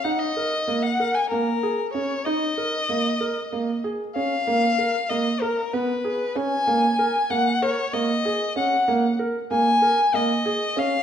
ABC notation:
X:1
M:7/8
L:1/16
Q:1/4=95
K:G#dor
V:1 name="Violin"
f d4 f2 g A4 c2 | d8- d2 z2 e2- | e4 d2 A2 B4 g2- | g4 f2 c2 d4 f2- |
f2 z2 g4 d4 e2 |]
V:2 name="Felt piano"
D2 A2 A,2 A2 A,2 G2 C2 | D2 A2 A,2 A2 A,2 G2 C2 | A,2 A2 A,2 A2 B,2 G2 C2 | A,2 A2 A,2 A2 A,2 G2 C2 |
A,2 A2 A,2 A2 A,2 G2 C2 |]